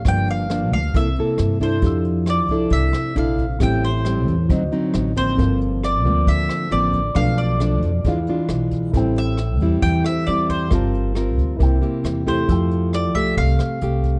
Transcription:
<<
  \new Staff \with { instrumentName = "Mandolin" } { \time 4/4 \key f \major \tempo 4 = 135 g''8 f''4 f''8 e''4. c''8~ | c''8 r8 d''4 e''4 f''4 | g''8 c''2 r4 c''8~ | c''8 r8 d''4 e''4 d''4 |
f''8 d''2 r4. | r8 e''4. g''8 e''8 d''8 c''8~ | c''2.~ c''8 c''8~ | c''4 d''8 e''8 f''2 | }
  \new Staff \with { instrumentName = "Grand piano" } { \time 4/4 \key f \major r1 | <d' g' a' e'''>1 | <c' g' a' e''>2 <fis' c'' ees''>2 | <c' f' a' bes'>1 |
<d' a' b' f''>2 <gis' d'' f''>2 | <e' a' c'' g''>2~ <e' a' c'' g''>8 <e' a' c'' e''>4. | <f' bes' c'' a''>2 <e' bes' c'' g''>2 | <a' g'' e'''>1 | }
  \new Staff \with { instrumentName = "Nylon-string guitar" } { \time 4/4 \key f \major << { <f bes d'>4 <f bes d'>8 r8 <bes e' a'>8 <bes e' a'>4 <d' e' a'>8~ | <d' e' a'>4. <d' e' a'>4. <d' e' a'>8 r8 | <g c' e'>8 r8 <g c' e'>8 r8 <fis c' ees'>8 <fis c' ees'>4 <f bes c'>8~ | <f bes c'>4. <f bes c'>4. <f bes c'>8 r8 |
<f a d'>4 <f a d'>8 r8 <gis d' f'>8 <gis d' f'>4. | <g c' e'>4 r8 <g c' e'>4. <g c' e'>4 | <c' f' bes'>4 <c' f' bes'>4 <bes e' g'>8 <bes e' g'>4 <a e' g'>8~ | <a e' g'>4. <a g'>4. <a g'>4 | } \\ { g,2 c2 | f2 c2 | a,2 d2 | g,2 d2 |
b,2 e2 | a,2 e2 | g2 c2 | f2 c2 | } >> }
  \new Staff \with { instrumentName = "Upright bass" } { \clef bass \time 4/4 \key f \major g,,4. d,8 c,8 r8 g,4 | f,4. c,8 c,8 r8 bes,,4 | a,,4. e,8 d,8 r8 a,,4 | g,,4. d,8 d,8 r8 a,,4 |
b,,4. f,8 e,8 r8 b,,4 | a,,4. e,8 e,8 r8 e,4 | g,,4. d,8 c,8 r8 e,4 | f,4. c,8 c,8 r8 c,4 | }
  \new DrumStaff \with { instrumentName = "Drums" } \drummode { \time 4/4 <hh bd ss>8 hh8 <hh ss>8 <hh bd>8 <hh bd>8 hh8 <hh ss>8 <hh bd>8 | <hh bd>8 hh8 <hh ss>8 <hh bd>8 <hh bd>8 <hh ss>8 hh8 <hh bd>8 | <hh bd ss>8 hh8 <hh ss>8 <hh bd>8 <hh bd>8 hh8 <hh ss>8 <hh bd>8 | <hh bd>8 hh8 <hh ss>8 <hh bd>8 <hh bd>8 <hh ss>8 hh8 <hh bd>8 |
<hh bd ss>8 hh8 <hh ss>8 <hh bd>8 <hh bd>8 hh8 <hh ss>8 <hh bd>8 | <hh bd>8 hh8 <hh ss>8 <hh bd>8 <hh bd>8 <hh ss>8 hh8 <hh bd>8 | <hh bd ss>8 hh8 <hh ss>8 <hh bd>8 <hh bd>8 hh8 <hh ss>8 <hh bd>8 | <hh bd>8 hh8 <hh ss>8 <hh bd>8 <hh bd>8 <hh ss>8 hh8 <hh bd>8 | }
>>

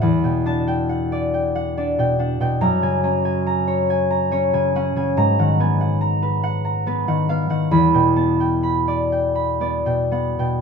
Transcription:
<<
  \new Staff \with { instrumentName = "Harp" } { \time 6/8 \key e \mixolydian \tempo 4. = 47 << { r8 a''8 r2 | ais''2. | ais''2. | b''2. | } \\ { <d'' fis''>16 g''8 g''16 fis''16 d''16 g''16 fis''16 d''16 g''16 fis''16 g''16 | r16 gis''16 ais''16 gis''16 ais''16 cis''16 gis''16 ais''16 cis''16 gis''16 fis''16 gis''16~ | gis''16 fis''16 gis''16 fis''16 ais''16 b'16 fis''16 ais''16 b'16 fis''16 eis''16 fis''16 | r16 g''16 a''16 g''16 b''16 d''16 g''16 b''16 d''16 g''16 fis''16 g''16 | } >> }
  \new Staff \with { instrumentName = "Harp" } { \clef bass \time 6/8 \key e \mixolydian <e, d'>16 b,16 d'4. d'16 b,16 d'16 b,16 | fis,16 cis16 cis'4. cis'16 cis16 cis'16 cis16 | gis,16 dis16 b4. b16 dis16 b16 dis16 | e,16 b,16 b4. b16 b,16 b16 b,16 | }
>>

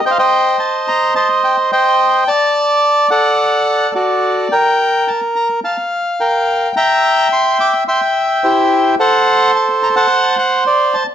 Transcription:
\new Staff \with { instrumentName = "Bandoneon" } { \time 4/4 \key c \dorian \tempo 4 = 108 << { g''32 f''32 g''8. a''8 bes''8 a''8 g''8 g''4 | a''4. fis''4. d''4 | g''4 a''8 bes''8 a''8 r8 g''4 | bes''4 c'''8 d'''8 c'''8 r8 c''4 |
fis''4 a''8 bes''16 a''8. fis''8 d''8 a''8 | } \\ { <c'' ees''>16 <c'' ees''>4.~ <c'' ees''>16 <c'' ees''>4 <c'' ees''>4 | d''4. <a' d''>4. <fis' a'>4 | bes'2 f''4 bes'4 | <e'' g''>2 <e'' g''>4 <e' g'>4 |
<a' c''>4.~ <a' c''>16 <c'' fis''>2 r16 | } >> }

